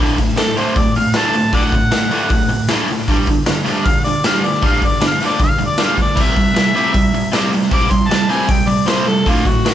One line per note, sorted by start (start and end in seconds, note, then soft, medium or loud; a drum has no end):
0.00 0.17 D2 medium
0.00 0.17 A2 medium
0.00 0.17 D3 medium
0.18 0.35 D2 medium
0.18 0.36 A2 medium
0.18 kick medium
0.18 open hi-hat medium
0.37 0.54 D2 medium
0.37 0.55 A2 medium
0.37 0.57 A4 loud
0.37 snare loud
0.37 open hi-hat medium
0.57 0.75 D2 medium
0.57 0.75 A2 medium
0.57 0.76 D3 loud
0.57 0.79 C5 medium
0.57 open hi-hat medium
0.76 0.93 D2 medium
0.76 0.94 A2 medium
0.76 0.95 D5 medium
0.76 kick loud
0.76 open hi-hat medium
0.95 1.13 D2 medium
0.95 1.14 A2 medium
0.95 1.19 F5 medium
0.95 open hi-hat medium
1.14 1.33 D2 medium
1.14 1.33 A2 loud
1.14 1.34 D3 medium
1.14 1.53 A5 medium
1.14 snare loud
1.14 open hi-hat medium
1.33 1.51 D2 medium
1.33 1.52 A2 medium
1.33 open hi-hat medium
1.53 1.71 D2 medium
1.53 1.71 A2 loud
1.53 1.72 D3 medium
1.53 1.63 D5 medium
1.53 2.66 F#5 loud
1.53 kick loud
1.53 open hi-hat medium
1.72 1.90 D2 medium
1.72 1.91 A2 medium
1.72 kick medium
1.72 open hi-hat medium
1.91 2.09 D2 medium
1.91 2.10 A2 medium
1.91 snare loud
1.91 open hi-hat medium
2.11 2.29 D2 medium
2.11 2.29 A2 loud
2.11 2.29 D3 loud
2.11 open hi-hat medium
2.30 2.48 D2 medium
2.30 2.48 A2 medium
2.30 kick loud
2.30 open hi-hat medium
2.49 2.67 D2 medium
2.49 2.67 A2 medium
2.49 open hi-hat medium
2.68 2.87 D2 medium
2.68 2.88 A2 loud
2.68 2.88 D3 loud
2.68 snare loud
2.68 open hi-hat medium
2.88 3.06 D2 medium
2.88 3.07 A2 medium
2.88 open hi-hat medium
2.98 snare soft
3.08 3.26 G2 loud
3.08 3.26 D3 loud
3.08 3.27 G3 loud
3.08 kick loud
3.08 open hi-hat medium
3.27 3.44 G2 medium
3.27 3.45 D3 medium
3.27 kick medium
3.27 open hi-hat medium
3.46 3.63 G2 medium
3.46 3.64 D3 medium
3.46 snare loud
3.46 open hi-hat medium
3.65 3.83 G2 medium
3.65 3.84 D3 loud
3.65 3.84 G3 medium
3.65 open hi-hat medium
3.84 4.03 G2 medium
3.84 4.03 D3 medium
3.84 4.03 F5 loud
3.84 kick loud
3.84 open hi-hat medium
4.04 4.23 G2 medium
4.04 4.23 D3 medium
4.04 4.23 D5 medium
4.04 open hi-hat medium
4.24 4.42 G2 medium
4.24 4.42 D3 medium
4.24 4.43 G3 loud
4.24 4.47 F5 loud
4.24 snare loud
4.24 open hi-hat medium
4.44 4.61 G2 medium
4.44 4.62 D3 medium
4.44 4.63 D5 loud
4.44 open hi-hat medium
4.54 snare soft
4.62 4.80 G2 medium
4.62 4.81 D3 medium
4.62 4.81 G3 medium
4.62 4.87 F5 loud
4.62 kick loud
4.62 open hi-hat medium
4.72 snare soft
4.82 5.00 G2 medium
4.82 5.00 D3 medium
4.82 5.02 D5 loud
4.82 kick medium
4.82 open hi-hat medium
5.01 5.18 G2 medium
5.01 5.18 D3 medium
5.01 snare loud
5.01 open hi-hat medium
5.07 5.23 F5 loud
5.20 5.38 G2 medium
5.20 5.39 D3 loud
5.20 5.40 G3 loud
5.20 open hi-hat medium
5.26 5.42 D5 medium
5.39 5.57 G2 medium
5.39 5.57 D3 medium
5.39 kick loud
5.39 open hi-hat medium
5.43 5.60 F5 loud
5.58 5.76 G2 medium
5.58 5.76 D3 medium
5.58 open hi-hat soft
5.66 5.81 D5 loud
5.78 5.96 G2 medium
5.78 5.96 D3 medium
5.78 5.97 G3 loud
5.78 snare loud
5.78 open hi-hat medium
5.85 6.00 F5 loud
5.97 6.15 G2 medium
5.97 6.15 D3 medium
5.97 kick medium
5.97 open hi-hat medium
6.02 6.23 D5 medium
6.15 6.34 C3 medium
6.15 6.34 G3 medium
6.15 6.35 C4 loud
6.15 kick loud
6.15 crash medium
6.22 7.32 E5 loud
6.36 6.53 C3 medium
6.36 6.53 G3 medium
6.36 kick medium
6.36 open hi-hat medium
6.54 6.72 C3 medium
6.54 6.72 G3 loud
6.54 snare loud
6.54 open hi-hat medium
6.75 6.92 C3 medium
6.75 6.92 G3 loud
6.75 6.94 C4 loud
6.75 open hi-hat medium
6.93 7.11 C3 medium
6.93 7.11 G3 medium
6.93 kick loud
6.93 open hi-hat medium
7.14 7.30 C3 medium
7.14 7.31 G3 medium
7.14 open hi-hat medium
7.32 7.50 C3 medium
7.32 7.51 G3 loud
7.32 7.51 C4 medium
7.32 snare loud
7.32 open hi-hat medium
7.53 7.70 C3 medium
7.53 7.70 G3 medium
7.53 open hi-hat medium
7.62 snare soft
7.71 7.89 C3 loud
7.71 7.89 G3 medium
7.71 7.89 C4 loud
7.71 7.93 D6 loud
7.71 kick loud
7.71 open hi-hat medium
7.90 8.08 C3 medium
7.90 8.08 G3 medium
7.90 8.09 C6 loud
7.90 kick medium
7.90 open hi-hat medium
8.07 8.27 C3 medium
8.07 8.28 G3 medium
8.07 8.27 A5 loud
8.07 open hi-hat medium
8.11 snare loud
8.29 8.46 C3 medium
8.29 8.47 G3 medium
8.29 8.47 C4 loud
8.29 8.52 G#5 loud
8.29 open hi-hat medium
8.48 8.65 C3 medium
8.48 8.65 G3 medium
8.48 8.70 G5 medium
8.48 kick loud
8.48 open hi-hat medium
8.67 8.85 C3 medium
8.67 8.85 G3 medium
8.67 8.88 D5 medium
8.67 open hi-hat medium
8.86 9.05 C3 medium
8.86 9.05 G3 loud
8.86 9.05 C4 loud
8.86 9.09 C5 loud
8.86 snare loud
8.86 open hi-hat medium
9.07 9.24 C3 medium
9.07 9.24 G3 medium
9.07 9.26 A4 loud
9.07 open hi-hat medium
9.26 9.44 D2 medium
9.26 9.44 A2 loud
9.26 9.45 D3 medium
9.26 9.49 F4 loud
9.26 kick loud
9.26 open hi-hat medium
9.37 snare soft
9.45 9.62 D2 medium
9.45 9.62 A2 medium
9.45 9.74 F#4 loud
9.45 kick medium
9.45 open hi-hat medium
9.65 9.74 D2 medium
9.65 9.74 A2 medium
9.65 snare loud
9.65 open hi-hat medium